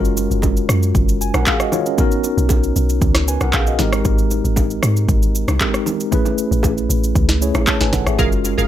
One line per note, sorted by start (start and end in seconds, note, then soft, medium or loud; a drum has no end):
0.00 0.28 F#1 loud
0.00 1.43 G#3 medium
0.00 1.18 C#4 medium
0.00 1.18 F4 medium
0.00 1.19 F#4 medium
0.00 1.22 A#4 medium
0.05 shaker medium
0.17 low bongo soft
0.17 shaker loud
0.31 0.67 F#1 loud
0.31 shaker medium
0.42 kick loud
0.42 high bongo medium
0.42 shaker medium
0.57 shaker medium
0.69 0.93 F#2 loud
0.69 cross-stick medium
0.69 shaker loud
0.83 shaker medium
0.95 1.32 F#1 loud
0.95 kick loud
0.95 low conga medium
0.95 shaker medium
1.09 shaker medium
1.21 1.34 G#5 medium
1.21 shaker loud
1.34 1.46 A#1 medium
1.34 1.47 A#4 medium
1.34 1.46 F#5 medium
1.34 cross-stick medium
1.34 low bongo medium
1.34 shaker medium
1.46 1.60 G#4 medium
1.46 1.60 F5 medium
1.46 kick medium
1.46 clap loud
1.46 high bongo medium
1.46 shaker medium
1.60 1.72 F#4 medium
1.60 1.72 D#5 medium
1.60 cross-stick medium
1.60 shaker medium
1.72 1.86 F4 medium
1.72 1.85 C#5 medium
1.72 low bongo medium
1.72 low conga medium
1.72 shaker medium
1.86 1.97 C#4 medium
1.86 1.99 A#4 medium
1.86 shaker medium
1.97 3.75 B3 medium
1.97 3.76 C#4 medium
1.97 3.76 D#4 medium
1.97 3.26 F#4 medium
1.97 3.26 A#4 medium
1.97 kick loud
1.97 low conga medium
1.97 shaker medium
2.12 shaker medium
2.24 low bongo soft
2.24 shaker loud
2.38 2.73 B1 loud
2.38 shaker medium
2.49 kick medium
2.49 high bongo medium
2.49 shaker medium
2.63 shaker soft
2.76 3.00 B1 loud
2.76 shaker medium
2.89 shaker medium
3.01 3.38 C#2 medium
3.01 kick loud
3.01 low conga medium
3.01 shaker medium
3.15 cross-stick loud
3.15 snare medium
3.15 shaker medium
3.28 3.41 B4 medium
3.28 3.41 G#5 medium
3.28 shaker loud
3.41 3.53 B1 loud
3.41 3.53 A#4 medium
3.41 3.53 F#5 medium
3.41 cross-stick medium
3.41 low bongo medium
3.41 shaker medium
3.53 3.78 A#1 loud
3.53 3.67 G#4 medium
3.53 3.67 F5 medium
3.53 kick medium
3.53 clap loud
3.53 high bongo medium
3.53 shaker medium
3.67 3.92 F#4 medium
3.67 3.92 D#5 medium
3.67 shaker medium
3.79 4.04 G#1 loud
3.79 5.56 G#3 medium
3.79 5.57 C4 medium
3.79 5.57 D#4 medium
3.79 5.57 G4 medium
3.79 5.58 A#4 medium
3.79 snare medium
3.79 low bongo medium
3.79 low conga medium
3.79 shaker medium
3.93 cross-stick loud
3.93 shaker medium
4.05 4.42 G#1 loud
4.05 kick loud
4.05 low conga medium
4.05 shaker medium
4.18 shaker medium
4.31 low bongo soft
4.31 shaker loud
4.44 4.80 G#1 loud
4.44 shaker medium
4.56 kick loud
4.56 high bongo medium
4.56 shaker medium
4.70 shaker soft
4.83 5.07 G#2 loud
4.83 cross-stick medium
4.83 shaker loud
4.97 shaker medium
5.08 5.45 G#1 medium
5.08 kick loud
5.08 low conga medium
5.08 shaker medium
5.23 shaker medium
5.35 shaker loud
5.48 5.60 C2 loud
5.48 cross-stick medium
5.48 low bongo medium
5.48 shaker medium
5.60 6.12 G#3 medium
5.60 6.12 C4 medium
5.60 6.12 D#4 medium
5.60 6.12 G4 medium
5.60 6.13 A#4 medium
5.60 kick medium
5.60 clap loud
5.60 high bongo medium
5.60 shaker medium
5.74 cross-stick medium
5.74 shaker medium
5.86 low bongo medium
5.86 low conga medium
5.86 shaker medium
6.00 shaker medium
6.11 7.38 A3 medium
6.11 7.39 C#4 medium
6.11 7.39 E4 medium
6.11 7.39 G#4 medium
6.11 7.40 B4 medium
6.11 kick loud
6.11 low conga medium
6.11 shaker medium
6.25 low bongo medium
6.25 shaker medium
6.38 shaker loud
6.51 6.87 A1 loud
6.51 shaker medium
6.63 kick medium
6.63 high bongo medium
6.63 shaker medium
6.78 shaker soft
6.89 7.14 A1 medium
6.89 shaker loud
7.04 shaker medium
7.15 7.52 C#2 loud
7.15 kick loud
7.15 low conga medium
7.15 shaker medium
7.29 snare medium
7.29 shaker medium
7.41 8.19 A3 medium
7.41 8.18 C#4 medium
7.41 8.19 E4 medium
7.41 7.68 G#4 medium
7.41 7.67 C#5 medium
7.41 shaker loud
7.55 7.66 A1 medium
7.55 cross-stick medium
7.55 high bongo medium
7.55 low bongo medium
7.55 shaker medium
7.67 7.80 C#5 medium
7.67 7.80 A5 medium
7.67 kick medium
7.67 clap loud
7.67 high bongo medium
7.67 shaker medium
7.80 7.92 G#1 medium
7.80 7.93 B4 medium
7.80 7.93 G#5 medium
7.80 snare medium
7.80 high bongo soft
7.80 shaker medium
7.93 8.06 F#1 loud
7.93 8.06 A4 medium
7.93 8.06 F#5 medium
7.93 kick medium
7.93 snare medium
7.93 low bongo medium
7.93 low conga medium
7.93 shaker medium
8.06 8.18 G#1 loud
8.06 8.32 G#4 medium
8.06 8.31 E5 medium
8.06 cross-stick loud
8.06 shaker medium
8.18 8.56 F#1 loud
8.18 8.68 G#3 medium
8.18 8.68 C#4 medium
8.18 8.68 F4 medium
8.18 8.68 F#4 medium
8.18 8.29 G#4 medium
8.18 8.29 A#4 medium
8.18 8.68 A#4 medium
8.18 8.29 F5 loud
8.18 kick loud
8.18 low conga medium
8.18 shaker medium
8.32 shaker medium
8.45 low bongo soft
8.45 shaker loud
8.58 8.68 F#1 medium
8.58 8.67 G#4 medium
8.58 8.67 A#4 medium
8.58 8.67 F5 medium
8.58 shaker medium